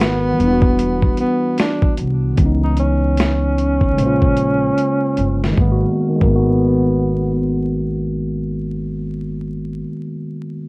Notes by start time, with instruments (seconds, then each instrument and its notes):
Already playing: upright bass G#1, tine electric piano D#3 G#3 B3 F#4 A#4, tenor saxophone B3
0.01 snare
0.33 tine electric piano E3 G3
0.39 upright bass E1, tine electric piano B3 D4, closed hi-hat
0.46 tine electric piano E4
0.53 tine electric piano F#4
0.62 kick
0.79 closed hi-hat
1.02 kick
1.17 tenor saxophone B3, closed hi-hat
1.58 tenor saxophone D4, snare, closed hi-hat
1.82 kick
1.97 upright bass C2, closed hi-hat
2.33 tine electric piano D#3 G#3
2.38 upright bass C#2, tine electric piano E3 B3, kick, closed hi-hat
2.43 tine electric piano C#4 D#4
2.64 tenor saxophone D#4
2.77 tenor saxophone C#4, closed hi-hat
3.18 snare, closed hi-hat
3.58 closed hi-hat
3.81 kick
3.93 tine electric piano C#3 G#3
3.98 upright bass A#1, tine electric piano A#3, closed hi-hat
4.03 tine electric piano F4 C5
4.22 kick
4.37 closed hi-hat
4.78 closed hi-hat
5.17 upright bass G1, closed hi-hat
5.44 tine electric piano D#3, snare
5.52 tine electric piano G#3
5.57 upright bass G#1, tine electric piano A#3, tenor saxophone B3, kick
5.65 tine electric piano B3
5.72 tine electric piano F#4
6.09 tine electric piano D#3
6.15 tine electric piano G#3
6.21 upright bass G#1, tenor saxophone B3, tine electric piano A#4, kick
6.29 tine electric piano B3
6.35 tine electric piano F#4